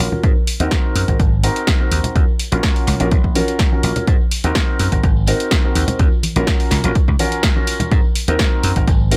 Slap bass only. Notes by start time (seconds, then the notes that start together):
0.24 G#2
0.60 D#2
0.95 F#2
1.08 G#1
1.20 G#1
1.91 D#2
2.16 D#2
2.52 A#1
2.88 C#2
3.00 A#1
3.12 A#1
3.84 A#1
4.08 G#2
4.44 D#2
4.80 F#2
4.92 G#1
5.04 G#1
5.75 D#2
6.00 D#2
6.36 A#1
6.71 C#2
6.84 A#1
7.08 C#2
7.92 G#2
8.28 D#2
8.64 F#2
8.76 G#1
8.88 G#1